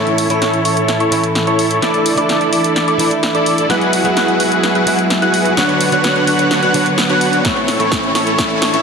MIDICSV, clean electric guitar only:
0, 0, Header, 1, 2, 480
1, 0, Start_track
1, 0, Key_signature, 3, "major"
1, 0, Tempo, 468750
1, 1867, Time_signature, 4, 2, 24, 8
1, 9035, End_track
2, 0, Start_track
2, 0, Title_t, "Clean electric guitar"
2, 0, Program_c, 0, 27
2, 0, Note_on_c, 0, 45, 67
2, 0, Note_on_c, 0, 52, 57
2, 0, Note_on_c, 0, 57, 58
2, 0, Note_on_c, 0, 61, 51
2, 0, Note_on_c, 0, 64, 75
2, 274, Note_off_c, 0, 45, 0
2, 275, Note_off_c, 0, 52, 0
2, 277, Note_off_c, 0, 57, 0
2, 278, Note_off_c, 0, 61, 0
2, 280, Note_off_c, 0, 64, 0
2, 293, Note_on_c, 0, 45, 72
2, 299, Note_on_c, 0, 52, 68
2, 305, Note_on_c, 0, 57, 71
2, 311, Note_on_c, 0, 61, 68
2, 318, Note_on_c, 0, 64, 81
2, 1111, Note_off_c, 0, 45, 0
2, 1114, Note_off_c, 0, 52, 0
2, 1117, Note_off_c, 0, 57, 0
2, 1120, Note_off_c, 0, 61, 0
2, 1123, Note_off_c, 0, 64, 0
2, 1133, Note_on_c, 0, 45, 75
2, 1139, Note_on_c, 0, 52, 69
2, 1145, Note_on_c, 0, 57, 68
2, 1151, Note_on_c, 0, 61, 68
2, 1157, Note_on_c, 0, 64, 82
2, 1831, Note_off_c, 0, 45, 0
2, 1834, Note_off_c, 0, 52, 0
2, 1837, Note_off_c, 0, 57, 0
2, 1840, Note_off_c, 0, 61, 0
2, 1843, Note_off_c, 0, 64, 0
2, 1859, Note_on_c, 0, 52, 68
2, 1866, Note_on_c, 0, 57, 55
2, 1866, Note_on_c, 0, 62, 61
2, 1876, Note_on_c, 0, 64, 60
2, 2195, Note_off_c, 0, 52, 0
2, 2196, Note_off_c, 0, 57, 0
2, 2198, Note_off_c, 0, 62, 0
2, 2200, Note_off_c, 0, 64, 0
2, 2213, Note_on_c, 0, 52, 77
2, 2222, Note_on_c, 0, 57, 69
2, 2229, Note_on_c, 0, 62, 67
2, 2238, Note_on_c, 0, 64, 84
2, 3031, Note_off_c, 0, 52, 0
2, 3035, Note_off_c, 0, 57, 0
2, 3039, Note_off_c, 0, 62, 0
2, 3044, Note_off_c, 0, 64, 0
2, 3052, Note_on_c, 0, 52, 76
2, 3061, Note_on_c, 0, 57, 68
2, 3069, Note_on_c, 0, 62, 69
2, 3077, Note_on_c, 0, 64, 84
2, 3751, Note_off_c, 0, 52, 0
2, 3755, Note_off_c, 0, 57, 0
2, 3759, Note_off_c, 0, 62, 0
2, 3763, Note_off_c, 0, 64, 0
2, 3778, Note_on_c, 0, 54, 72
2, 3786, Note_on_c, 0, 59, 64
2, 3787, Note_on_c, 0, 56, 62
2, 3795, Note_on_c, 0, 64, 61
2, 4114, Note_off_c, 0, 54, 0
2, 4116, Note_off_c, 0, 56, 0
2, 4119, Note_off_c, 0, 59, 0
2, 4121, Note_off_c, 0, 64, 0
2, 4133, Note_on_c, 0, 54, 77
2, 4141, Note_on_c, 0, 56, 72
2, 4150, Note_on_c, 0, 59, 68
2, 4158, Note_on_c, 0, 64, 83
2, 4951, Note_off_c, 0, 54, 0
2, 4955, Note_off_c, 0, 56, 0
2, 4960, Note_off_c, 0, 59, 0
2, 4964, Note_off_c, 0, 64, 0
2, 4973, Note_on_c, 0, 54, 78
2, 4981, Note_on_c, 0, 56, 74
2, 4990, Note_on_c, 0, 59, 72
2, 4998, Note_on_c, 0, 64, 84
2, 5671, Note_off_c, 0, 54, 0
2, 5675, Note_off_c, 0, 56, 0
2, 5679, Note_off_c, 0, 59, 0
2, 5684, Note_off_c, 0, 64, 0
2, 5703, Note_on_c, 0, 54, 65
2, 5705, Note_on_c, 0, 50, 61
2, 5707, Note_on_c, 0, 59, 60
2, 5715, Note_on_c, 0, 73, 68
2, 6035, Note_off_c, 0, 50, 0
2, 6037, Note_off_c, 0, 54, 0
2, 6039, Note_off_c, 0, 59, 0
2, 6041, Note_off_c, 0, 73, 0
2, 6053, Note_on_c, 0, 50, 75
2, 6061, Note_on_c, 0, 54, 71
2, 6069, Note_on_c, 0, 59, 70
2, 6078, Note_on_c, 0, 73, 83
2, 6871, Note_off_c, 0, 50, 0
2, 6875, Note_off_c, 0, 54, 0
2, 6879, Note_off_c, 0, 59, 0
2, 6884, Note_off_c, 0, 73, 0
2, 6894, Note_on_c, 0, 50, 78
2, 6903, Note_on_c, 0, 54, 71
2, 6911, Note_on_c, 0, 59, 73
2, 6919, Note_on_c, 0, 73, 86
2, 7592, Note_off_c, 0, 50, 0
2, 7596, Note_off_c, 0, 54, 0
2, 7600, Note_off_c, 0, 59, 0
2, 7604, Note_off_c, 0, 73, 0
2, 7618, Note_on_c, 0, 45, 62
2, 7623, Note_on_c, 0, 57, 60
2, 7625, Note_on_c, 0, 52, 53
2, 7632, Note_on_c, 0, 64, 73
2, 7634, Note_on_c, 0, 61, 55
2, 7954, Note_off_c, 0, 45, 0
2, 7956, Note_off_c, 0, 52, 0
2, 7957, Note_off_c, 0, 57, 0
2, 7959, Note_off_c, 0, 61, 0
2, 7960, Note_off_c, 0, 64, 0
2, 7972, Note_on_c, 0, 45, 70
2, 7979, Note_on_c, 0, 52, 63
2, 7985, Note_on_c, 0, 57, 67
2, 7991, Note_on_c, 0, 61, 64
2, 7997, Note_on_c, 0, 64, 78
2, 8560, Note_off_c, 0, 45, 0
2, 8564, Note_off_c, 0, 52, 0
2, 8567, Note_off_c, 0, 57, 0
2, 8570, Note_off_c, 0, 61, 0
2, 8573, Note_off_c, 0, 64, 0
2, 8579, Note_on_c, 0, 45, 61
2, 8583, Note_on_c, 0, 57, 64
2, 8587, Note_on_c, 0, 52, 56
2, 8592, Note_on_c, 0, 64, 76
2, 8594, Note_on_c, 0, 61, 53
2, 8915, Note_off_c, 0, 45, 0
2, 8916, Note_off_c, 0, 52, 0
2, 8918, Note_off_c, 0, 57, 0
2, 8919, Note_off_c, 0, 61, 0
2, 8921, Note_off_c, 0, 64, 0
2, 8933, Note_on_c, 0, 45, 75
2, 8939, Note_on_c, 0, 52, 68
2, 8945, Note_on_c, 0, 57, 67
2, 8951, Note_on_c, 0, 61, 69
2, 8958, Note_on_c, 0, 64, 83
2, 9035, Note_off_c, 0, 45, 0
2, 9035, Note_off_c, 0, 52, 0
2, 9035, Note_off_c, 0, 57, 0
2, 9035, Note_off_c, 0, 61, 0
2, 9035, Note_off_c, 0, 64, 0
2, 9035, End_track
0, 0, End_of_file